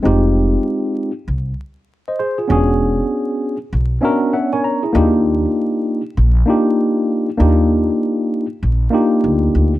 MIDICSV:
0, 0, Header, 1, 3, 480
1, 0, Start_track
1, 0, Key_signature, -3, "major"
1, 0, Tempo, 612245
1, 41, Time_signature, 4, 2, 24, 8
1, 7678, End_track
2, 0, Start_track
2, 0, Title_t, "Tine electric piano"
2, 0, Program_c, 0, 4
2, 17, Note_on_c, 0, 56, 77
2, 24, Note_on_c, 0, 60, 77
2, 34, Note_on_c, 0, 63, 76
2, 42, Note_on_c, 0, 65, 72
2, 49, Note_on_c, 0, 67, 89
2, 863, Note_off_c, 0, 56, 0
2, 867, Note_off_c, 0, 60, 0
2, 871, Note_off_c, 0, 63, 0
2, 875, Note_off_c, 0, 65, 0
2, 879, Note_off_c, 0, 67, 0
2, 1630, Note_on_c, 0, 75, 62
2, 1632, Note_on_c, 0, 72, 57
2, 1710, Note_off_c, 0, 72, 0
2, 1717, Note_off_c, 0, 75, 0
2, 1719, Note_on_c, 0, 72, 70
2, 1724, Note_on_c, 0, 68, 60
2, 1856, Note_off_c, 0, 68, 0
2, 1861, Note_off_c, 0, 72, 0
2, 1865, Note_on_c, 0, 68, 62
2, 1869, Note_on_c, 0, 65, 52
2, 1941, Note_on_c, 0, 59, 81
2, 1950, Note_on_c, 0, 61, 75
2, 1956, Note_on_c, 0, 62, 73
2, 1964, Note_off_c, 0, 68, 0
2, 1964, Note_on_c, 0, 66, 75
2, 1973, Note_on_c, 0, 68, 88
2, 2097, Note_off_c, 0, 65, 0
2, 2785, Note_off_c, 0, 59, 0
2, 2789, Note_off_c, 0, 61, 0
2, 2792, Note_off_c, 0, 62, 0
2, 2796, Note_off_c, 0, 66, 0
2, 2801, Note_off_c, 0, 68, 0
2, 3142, Note_on_c, 0, 59, 79
2, 3148, Note_on_c, 0, 61, 77
2, 3157, Note_on_c, 0, 62, 80
2, 3157, Note_on_c, 0, 76, 66
2, 3165, Note_on_c, 0, 66, 76
2, 3173, Note_on_c, 0, 70, 95
2, 3382, Note_off_c, 0, 76, 0
2, 3398, Note_on_c, 0, 76, 57
2, 3398, Note_on_c, 0, 78, 65
2, 3403, Note_off_c, 0, 66, 0
2, 3403, Note_on_c, 0, 73, 50
2, 3407, Note_off_c, 0, 70, 0
2, 3537, Note_off_c, 0, 78, 0
2, 3540, Note_off_c, 0, 73, 0
2, 3540, Note_off_c, 0, 76, 0
2, 3550, Note_on_c, 0, 73, 71
2, 3550, Note_on_c, 0, 80, 68
2, 3556, Note_on_c, 0, 70, 60
2, 3635, Note_off_c, 0, 80, 0
2, 3640, Note_on_c, 0, 82, 66
2, 3777, Note_off_c, 0, 73, 0
2, 3780, Note_off_c, 0, 70, 0
2, 3786, Note_off_c, 0, 59, 0
2, 3787, Note_on_c, 0, 68, 64
2, 3790, Note_off_c, 0, 61, 0
2, 3791, Note_on_c, 0, 64, 58
2, 3794, Note_off_c, 0, 62, 0
2, 3863, Note_on_c, 0, 58, 83
2, 3864, Note_off_c, 0, 82, 0
2, 3872, Note_on_c, 0, 62, 77
2, 3879, Note_on_c, 0, 63, 81
2, 3887, Note_on_c, 0, 65, 76
2, 3896, Note_on_c, 0, 67, 87
2, 4016, Note_off_c, 0, 68, 0
2, 4018, Note_off_c, 0, 64, 0
2, 4706, Note_off_c, 0, 58, 0
2, 4710, Note_off_c, 0, 62, 0
2, 4714, Note_off_c, 0, 63, 0
2, 4718, Note_off_c, 0, 65, 0
2, 4722, Note_off_c, 0, 67, 0
2, 5063, Note_on_c, 0, 58, 84
2, 5072, Note_on_c, 0, 62, 76
2, 5079, Note_on_c, 0, 63, 79
2, 5087, Note_on_c, 0, 65, 78
2, 5094, Note_on_c, 0, 67, 91
2, 5707, Note_off_c, 0, 58, 0
2, 5711, Note_off_c, 0, 62, 0
2, 5715, Note_off_c, 0, 63, 0
2, 5719, Note_off_c, 0, 65, 0
2, 5722, Note_off_c, 0, 67, 0
2, 5782, Note_on_c, 0, 58, 83
2, 5788, Note_on_c, 0, 62, 77
2, 5796, Note_on_c, 0, 63, 77
2, 5805, Note_on_c, 0, 65, 75
2, 5813, Note_on_c, 0, 67, 87
2, 6626, Note_off_c, 0, 58, 0
2, 6628, Note_off_c, 0, 62, 0
2, 6632, Note_off_c, 0, 63, 0
2, 6637, Note_off_c, 0, 65, 0
2, 6641, Note_off_c, 0, 67, 0
2, 6981, Note_on_c, 0, 58, 85
2, 6988, Note_on_c, 0, 62, 71
2, 6997, Note_on_c, 0, 63, 76
2, 7004, Note_on_c, 0, 65, 77
2, 7011, Note_on_c, 0, 67, 89
2, 7626, Note_off_c, 0, 58, 0
2, 7629, Note_off_c, 0, 62, 0
2, 7634, Note_off_c, 0, 63, 0
2, 7637, Note_off_c, 0, 65, 0
2, 7641, Note_off_c, 0, 67, 0
2, 7678, End_track
3, 0, Start_track
3, 0, Title_t, "Upright bass"
3, 0, Program_c, 1, 32
3, 41, Note_on_c, 1, 29, 96
3, 426, Note_off_c, 1, 29, 0
3, 1001, Note_on_c, 1, 36, 79
3, 1194, Note_off_c, 1, 36, 0
3, 1959, Note_on_c, 1, 28, 99
3, 2345, Note_off_c, 1, 28, 0
3, 2921, Note_on_c, 1, 35, 85
3, 3114, Note_off_c, 1, 35, 0
3, 3880, Note_on_c, 1, 39, 109
3, 4266, Note_off_c, 1, 39, 0
3, 4839, Note_on_c, 1, 34, 91
3, 5033, Note_off_c, 1, 34, 0
3, 5801, Note_on_c, 1, 39, 95
3, 6186, Note_off_c, 1, 39, 0
3, 6764, Note_on_c, 1, 34, 89
3, 6955, Note_off_c, 1, 34, 0
3, 7243, Note_on_c, 1, 38, 83
3, 7435, Note_off_c, 1, 38, 0
3, 7486, Note_on_c, 1, 38, 80
3, 7676, Note_off_c, 1, 38, 0
3, 7678, End_track
0, 0, End_of_file